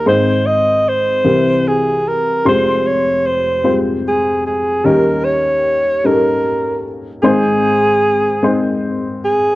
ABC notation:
X:1
M:6/8
L:1/8
Q:3/8=50
K:Ab
V:1 name="Alto saxophone"
c e c2 A B | c d c z A A | B d2 B2 z | A4 z A |]
V:2 name="Upright piano"
[A,CEc]2 z [=E,C=EB]2 z | [C,G,A,Fc']2 z [G,A,CFc]2 z | [G,DEB]2 z [G,DE=AB]2 z | [A,CEc]2 z [A,CEc]2 z |]
V:3 name="Upright piano" clef=bass
[A,,,A,,]3 [C,,C,]3 | [F,,,F,,]6 | [E,,E,]6 | [A,,,A,,]6 |]